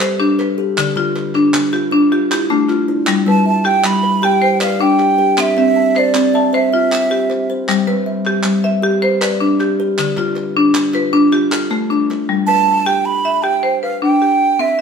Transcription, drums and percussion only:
0.00 clap medium
0.40 clap soft
0.78 clap medium
0.98 clap soft
1.16 clap soft
1.35 clap soft
1.54 clap medium
1.74 clap soft
2.32 clap medium
2.70 clap soft
3.07 clap medium
3.65 clap soft
3.84 clap medium
4.61 clap medium
4.99 clap soft
5.38 clap medium
5.95 clap soft
6.15 clap medium
6.92 clap medium
7.30 clap soft
7.69 clap medium
8.25 clap soft
8.43 clap medium
9.22 clap medium
9.60 clap soft
9.98 clap medium
10.17 clap soft
10.36 clap soft
10.75 clap medium
10.94 clap soft
11.33 clap soft
11.52 clap medium
11.71 clap soft
12.11 clap soft

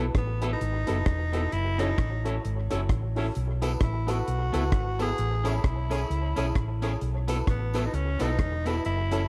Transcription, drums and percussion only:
0.15 kick loud
0.15 cross-stick loud
0.15 closed hi-hat medium
0.42 closed hi-hat medium
0.61 closed hi-hat medium
0.87 closed hi-hat medium
1.06 kick loud
1.06 cross-stick loud
1.06 closed hi-hat medium
1.33 closed hi-hat medium
1.52 closed hi-hat medium
1.79 closed hi-hat medium
1.98 kick loud
1.98 cross-stick loud
1.98 closed hi-hat medium
2.26 closed hi-hat medium
2.45 closed hi-hat medium
2.71 closed hi-hat loud
2.89 kick loud
2.89 cross-stick loud
2.89 closed hi-hat medium
3.16 open hi-hat soft
3.35 closed hi-hat medium
3.62 closed hi-hat medium
3.62 tambourine medium
3.81 kick loud
3.81 cross-stick loud
3.81 closed hi-hat medium
4.08 closed hi-hat medium
4.08 tambourine medium
4.28 closed hi-hat medium
4.54 closed hi-hat medium
4.54 tambourine medium
4.72 kick loud
4.72 cross-stick loud
4.72 closed hi-hat medium
5.00 closed hi-hat medium
5.00 tambourine medium
5.18 closed hi-hat medium
5.45 closed hi-hat medium
5.45 tambourine medium
5.64 kick loud
5.64 cross-stick loud
5.64 closed hi-hat medium
5.91 closed hi-hat loud
5.91 tambourine medium
6.11 closed hi-hat medium
6.36 closed hi-hat medium
6.36 tambourine medium
6.55 kick loud
6.55 cross-stick loud
6.55 closed hi-hat medium
6.82 closed hi-hat medium
6.82 tambourine medium
7.01 closed hi-hat medium
7.28 closed hi-hat medium
7.28 tambourine medium
7.47 kick loud
7.47 cross-stick loud
7.47 closed hi-hat medium
7.74 closed hi-hat loud
7.74 tambourine medium
7.94 closed hi-hat medium
8.19 closed hi-hat medium
8.19 tambourine medium
8.39 kick loud
8.39 cross-stick loud
8.39 closed hi-hat medium
8.66 closed hi-hat medium
8.66 tambourine medium
8.85 closed hi-hat medium
9.12 closed hi-hat medium
9.12 tambourine medium

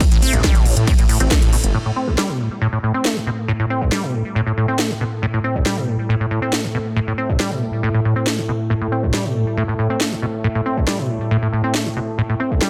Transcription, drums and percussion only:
0.01 kick loud
0.01 closed hi-hat medium
0.01 ride medium
0.12 closed hi-hat medium
0.22 open hi-hat loud
0.33 closed hi-hat medium
0.44 kick loud
0.44 snare loud
0.44 closed hi-hat medium
0.44 ride medium
0.55 closed hi-hat medium
0.66 open hi-hat medium
0.77 closed hi-hat medium
0.87 kick loud
0.87 closed hi-hat medium
0.87 ride medium
0.98 closed hi-hat medium
1.09 open hi-hat loud
1.20 closed hi-hat medium
1.31 kick loud
1.31 snare loud
1.31 closed hi-hat medium
1.31 ride medium
1.42 closed hi-hat medium
1.53 open hi-hat medium
1.64 closed hi-hat medium
2.18 snare loud
3.05 snare loud
3.92 snare loud
4.79 snare loud
5.66 snare loud
6.53 snare loud
7.40 snare loud
8.27 snare loud
9.14 snare loud
10.01 snare loud
10.87 snare loud
11.74 snare loud
12.61 snare loud

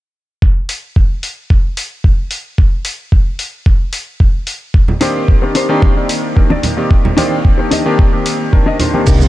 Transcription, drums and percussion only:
0.42 kick loud
0.69 open hi-hat medium
0.96 kick loud
1.23 open hi-hat medium
1.50 kick loud
1.77 open hi-hat medium
2.04 kick loud
2.31 open hi-hat medium
2.58 kick loud
2.85 open hi-hat loud
3.12 kick loud
3.39 open hi-hat medium
3.66 kick loud
3.93 open hi-hat medium
4.20 kick loud
4.47 open hi-hat medium
4.74 kick loud
4.88 low conga medium
5.01 open hi-hat loud
5.28 kick loud
5.55 open hi-hat medium
5.82 kick loud
5.82 high conga medium
6.09 open hi-hat loud
6.37 kick loud
6.50 high conga medium
6.63 open hi-hat medium
6.63 low conga medium
6.91 kick loud
7.05 low conga medium
7.17 open hi-hat loud
7.17 high conga medium
7.45 kick loud
7.71 open hi-hat medium
7.71 high conga medium
7.99 kick loud
8.26 open hi-hat loud
8.53 kick loud
8.80 open hi-hat medium
8.80 low conga medium
8.94 high conga medium
9.07 kick loud
9.07 crash medium
9.07 muted conga soft
9.07 shaker medium
9.21 low conga medium
9.21 shaker soft

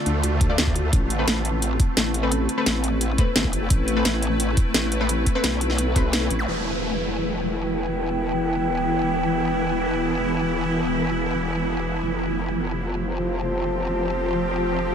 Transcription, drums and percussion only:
0.06 closed hi-hat medium
0.23 closed hi-hat medium
0.41 kick loud
0.41 closed hi-hat medium
0.58 snare loud
0.58 closed hi-hat medium
0.67 kick medium
0.76 closed hi-hat medium
0.93 kick loud
0.93 closed hi-hat medium
1.10 closed hi-hat medium
1.28 snare loud
1.28 closed hi-hat medium
1.45 closed hi-hat medium
1.62 closed hi-hat medium
1.80 kick loud
1.80 closed hi-hat medium
1.97 snare loud
1.97 closed hi-hat medium
2.14 closed hi-hat medium
2.32 closed hi-hat medium
2.49 closed hi-hat medium
2.66 snare loud
2.66 closed hi-hat medium
2.84 closed hi-hat medium
3.01 closed hi-hat medium
3.18 kick loud
3.18 closed hi-hat medium
3.36 snare loud
3.36 closed hi-hat medium
3.44 kick medium
3.53 closed hi-hat medium
3.70 kick loud
3.70 closed hi-hat medium
3.88 closed hi-hat medium
4.05 snare loud
4.05 closed hi-hat medium
4.22 closed hi-hat medium
4.40 closed hi-hat loud
4.57 kick loud
4.57 closed hi-hat medium
4.74 snare loud
4.74 closed hi-hat medium
4.92 closed hi-hat medium
5.09 closed hi-hat loud
5.26 kick medium
5.26 closed hi-hat medium
5.44 snare loud
5.44 closed hi-hat loud
5.61 closed hi-hat medium
5.70 snare soft
5.78 closed hi-hat loud
5.96 kick loud
5.96 closed hi-hat medium
6.13 snare loud
6.13 closed hi-hat loud
6.30 closed hi-hat medium

